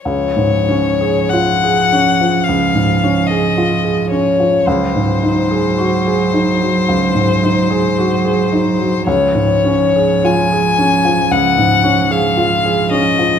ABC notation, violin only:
X:1
M:4/4
L:1/16
Q:1/4=54
K:Db
V:1 name="Violin"
d4 g4 f3 e3 d2 | c16 | d4 a4 g3 f3 e2 |]